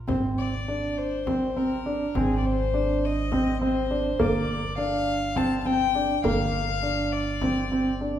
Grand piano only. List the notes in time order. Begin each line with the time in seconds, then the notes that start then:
0.08 C4
0.68 D4
1.27 C4
1.57 C4
1.86 D4
2.15 C4
2.74 D4
3.33 C4
3.62 C4
3.91 D4
4.19 A#3
4.78 D4
5.36 C4
5.65 C4
5.95 D4
6.25 A#3
6.83 D4
7.42 C4
7.72 C4
8.01 D4